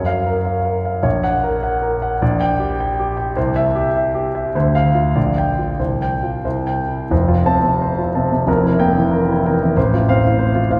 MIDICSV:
0, 0, Header, 1, 2, 480
1, 0, Start_track
1, 0, Key_signature, -1, "major"
1, 0, Tempo, 583090
1, 864, Time_signature, 2, 2, 24, 8
1, 3250, Tempo, 608519
1, 4210, Tempo, 641711
1, 5170, Tempo, 674916
1, 6610, Tempo, 641026
1, 8350, End_track
2, 0, Start_track
2, 0, Title_t, "Grand piano"
2, 0, Program_c, 0, 0
2, 0, Note_on_c, 0, 42, 55
2, 0, Note_on_c, 0, 73, 53
2, 22, Control_c, 0, 64, 127
2, 50, Note_on_c, 0, 77, 68
2, 147, Note_off_c, 0, 73, 0
2, 215, Note_on_c, 0, 70, 50
2, 310, Note_off_c, 0, 77, 0
2, 370, Note_on_c, 0, 77, 53
2, 474, Note_off_c, 0, 70, 0
2, 536, Note_on_c, 0, 70, 50
2, 633, Note_off_c, 0, 77, 0
2, 701, Note_on_c, 0, 77, 51
2, 798, Note_off_c, 0, 70, 0
2, 834, Note_off_c, 0, 42, 0
2, 845, Note_on_c, 0, 34, 64
2, 849, Note_on_c, 0, 73, 56
2, 864, Note_off_c, 0, 77, 0
2, 878, Control_c, 0, 64, 0
2, 999, Control_c, 0, 64, 127
2, 1016, Note_on_c, 0, 78, 70
2, 1115, Note_off_c, 0, 73, 0
2, 1179, Note_on_c, 0, 70, 55
2, 1278, Note_off_c, 0, 78, 0
2, 1342, Note_on_c, 0, 78, 62
2, 1437, Note_off_c, 0, 70, 0
2, 1498, Note_on_c, 0, 70, 56
2, 1597, Note_off_c, 0, 78, 0
2, 1664, Note_on_c, 0, 78, 55
2, 1755, Note_off_c, 0, 70, 0
2, 1783, Note_off_c, 0, 34, 0
2, 1822, Note_off_c, 0, 78, 0
2, 1828, Note_on_c, 0, 34, 68
2, 1828, Note_on_c, 0, 74, 62
2, 1836, Control_c, 0, 64, 0
2, 1950, Control_c, 0, 64, 127
2, 1980, Note_on_c, 0, 79, 78
2, 2078, Note_off_c, 0, 74, 0
2, 2136, Note_on_c, 0, 67, 57
2, 2232, Note_off_c, 0, 79, 0
2, 2307, Note_on_c, 0, 79, 58
2, 2388, Note_off_c, 0, 67, 0
2, 2464, Note_on_c, 0, 67, 60
2, 2552, Note_off_c, 0, 79, 0
2, 2610, Note_on_c, 0, 79, 55
2, 2710, Note_off_c, 0, 67, 0
2, 2742, Note_off_c, 0, 34, 0
2, 2767, Note_off_c, 0, 79, 0
2, 2770, Note_on_c, 0, 36, 68
2, 2770, Note_on_c, 0, 72, 63
2, 2781, Control_c, 0, 64, 0
2, 2894, Control_c, 0, 64, 127
2, 2930, Note_on_c, 0, 76, 77
2, 3024, Note_off_c, 0, 72, 0
2, 3091, Note_on_c, 0, 67, 62
2, 3186, Note_off_c, 0, 76, 0
2, 3254, Note_on_c, 0, 76, 60
2, 3344, Note_off_c, 0, 67, 0
2, 3407, Note_on_c, 0, 67, 56
2, 3502, Note_off_c, 0, 76, 0
2, 3566, Note_on_c, 0, 76, 53
2, 3659, Note_off_c, 0, 67, 0
2, 3696, Note_off_c, 0, 36, 0
2, 3725, Note_off_c, 0, 76, 0
2, 3727, Note_on_c, 0, 72, 58
2, 3728, Note_on_c, 0, 38, 68
2, 3734, Control_c, 0, 64, 0
2, 3872, Control_c, 0, 64, 127
2, 3883, Note_on_c, 0, 77, 77
2, 3984, Note_off_c, 0, 72, 0
2, 4038, Note_on_c, 0, 65, 53
2, 4143, Note_off_c, 0, 77, 0
2, 4196, Note_off_c, 0, 38, 0
2, 4202, Note_on_c, 0, 74, 53
2, 4204, Note_off_c, 0, 65, 0
2, 4204, Note_on_c, 0, 34, 58
2, 4222, Control_c, 0, 64, 0
2, 4320, Control_c, 0, 64, 127
2, 4372, Note_on_c, 0, 79, 65
2, 4452, Note_off_c, 0, 74, 0
2, 4524, Note_on_c, 0, 65, 40
2, 4618, Note_off_c, 0, 79, 0
2, 4662, Note_off_c, 0, 34, 0
2, 4679, Note_on_c, 0, 36, 51
2, 4681, Note_off_c, 0, 65, 0
2, 4682, Note_on_c, 0, 72, 47
2, 4690, Control_c, 0, 64, 0
2, 4829, Control_c, 0, 64, 127
2, 4851, Note_on_c, 0, 79, 64
2, 4941, Note_off_c, 0, 72, 0
2, 5007, Note_on_c, 0, 65, 45
2, 5108, Note_off_c, 0, 79, 0
2, 5155, Note_off_c, 0, 36, 0
2, 5169, Note_on_c, 0, 36, 57
2, 5170, Note_off_c, 0, 65, 0
2, 5171, Note_on_c, 0, 72, 47
2, 5183, Control_c, 0, 64, 0
2, 5310, Control_c, 0, 64, 127
2, 5327, Note_on_c, 0, 79, 63
2, 5421, Note_off_c, 0, 72, 0
2, 5480, Note_on_c, 0, 64, 39
2, 5580, Note_off_c, 0, 79, 0
2, 5630, Note_off_c, 0, 36, 0
2, 5637, Note_on_c, 0, 29, 58
2, 5642, Note_off_c, 0, 64, 0
2, 5642, Note_on_c, 0, 41, 63
2, 5646, Note_on_c, 0, 72, 53
2, 5655, Control_c, 0, 64, 0
2, 5763, Note_on_c, 0, 65, 58
2, 5788, Control_c, 0, 64, 127
2, 5841, Note_off_c, 0, 72, 0
2, 5888, Note_on_c, 0, 72, 54
2, 5889, Note_on_c, 0, 60, 53
2, 5890, Note_on_c, 0, 81, 78
2, 5961, Note_off_c, 0, 65, 0
2, 5999, Note_off_c, 0, 72, 0
2, 6000, Note_off_c, 0, 81, 0
2, 6011, Note_on_c, 0, 48, 48
2, 6142, Note_on_c, 0, 72, 59
2, 6206, Note_off_c, 0, 48, 0
2, 6263, Note_on_c, 0, 65, 51
2, 6278, Note_off_c, 0, 60, 0
2, 6331, Note_off_c, 0, 72, 0
2, 6377, Note_on_c, 0, 72, 48
2, 6381, Note_on_c, 0, 81, 50
2, 6382, Note_on_c, 0, 48, 53
2, 6450, Note_off_c, 0, 65, 0
2, 6482, Note_off_c, 0, 72, 0
2, 6485, Note_off_c, 0, 81, 0
2, 6490, Note_off_c, 0, 48, 0
2, 6500, Note_on_c, 0, 48, 52
2, 6577, Note_off_c, 0, 29, 0
2, 6580, Note_off_c, 0, 41, 0
2, 6605, Note_on_c, 0, 29, 64
2, 6613, Note_on_c, 0, 41, 65
2, 6614, Note_off_c, 0, 48, 0
2, 6616, Note_on_c, 0, 70, 63
2, 6623, Control_c, 0, 64, 0
2, 6727, Note_on_c, 0, 64, 52
2, 6738, Control_c, 0, 64, 127
2, 6807, Note_off_c, 0, 70, 0
2, 6846, Note_on_c, 0, 58, 51
2, 6851, Note_on_c, 0, 70, 55
2, 6851, Note_on_c, 0, 79, 74
2, 6921, Note_off_c, 0, 64, 0
2, 6959, Note_off_c, 0, 70, 0
2, 6960, Note_off_c, 0, 79, 0
2, 6972, Note_on_c, 0, 52, 59
2, 7086, Note_on_c, 0, 70, 57
2, 7165, Note_off_c, 0, 52, 0
2, 7211, Note_on_c, 0, 64, 54
2, 7234, Note_off_c, 0, 58, 0
2, 7283, Note_off_c, 0, 70, 0
2, 7344, Note_on_c, 0, 70, 55
2, 7349, Note_on_c, 0, 52, 52
2, 7352, Note_on_c, 0, 79, 59
2, 7406, Note_off_c, 0, 64, 0
2, 7448, Note_off_c, 0, 70, 0
2, 7453, Note_off_c, 0, 79, 0
2, 7456, Note_off_c, 0, 52, 0
2, 7467, Note_on_c, 0, 52, 60
2, 7544, Note_off_c, 0, 29, 0
2, 7549, Note_off_c, 0, 41, 0
2, 7579, Note_on_c, 0, 72, 61
2, 7580, Note_on_c, 0, 33, 70
2, 7582, Note_off_c, 0, 52, 0
2, 7588, Control_c, 0, 64, 0
2, 7689, Control_c, 0, 64, 127
2, 7706, Note_on_c, 0, 65, 59
2, 7770, Note_off_c, 0, 72, 0
2, 7817, Note_on_c, 0, 72, 59
2, 7819, Note_on_c, 0, 60, 59
2, 7821, Note_on_c, 0, 77, 80
2, 7893, Note_off_c, 0, 65, 0
2, 7924, Note_off_c, 0, 72, 0
2, 7927, Note_off_c, 0, 77, 0
2, 7942, Note_on_c, 0, 45, 55
2, 8044, Note_on_c, 0, 72, 68
2, 8129, Note_off_c, 0, 45, 0
2, 8165, Note_on_c, 0, 65, 61
2, 8198, Note_off_c, 0, 60, 0
2, 8238, Note_off_c, 0, 72, 0
2, 8281, Note_on_c, 0, 45, 59
2, 8281, Note_on_c, 0, 72, 53
2, 8287, Note_on_c, 0, 77, 63
2, 8350, Note_off_c, 0, 33, 0
2, 8350, Note_off_c, 0, 45, 0
2, 8350, Note_off_c, 0, 65, 0
2, 8350, Note_off_c, 0, 72, 0
2, 8350, Note_off_c, 0, 77, 0
2, 8350, End_track
0, 0, End_of_file